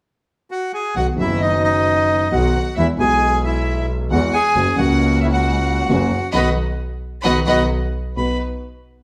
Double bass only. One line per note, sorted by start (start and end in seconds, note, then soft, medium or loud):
0.96 1.15 B1 soft
1.19 2.27 F#1 medium
2.32 2.51 B1 medium
2.77 2.96 E2 medium
2.99 4.06 B1 medium
4.12 4.31 E2 medium
4.56 4.75 F#1 medium
4.79 5.85 C#2 medium
5.90 6.09 F#1 medium
6.35 6.51 B1 medium
7.25 7.42 B1 medium
7.48 7.65 B1 medium
8.17 8.36 B1 soft